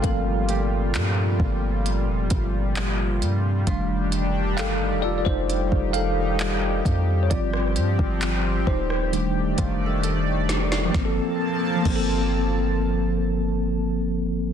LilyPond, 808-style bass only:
\new Staff \with { instrumentName = "808-style bass" } { \clef bass \time 4/4 \key g \minor \tempo 4 = 66 g,,4 g,8 g,,8. f,,16 g,,4 g,8 | f,,4 g,,16. f,,16. f,,8 f,,4~ f,,16 f,8 | g,,8 g,16 g,,8. ees,,4 f,,4. | g,,16 r8. g,,2. | }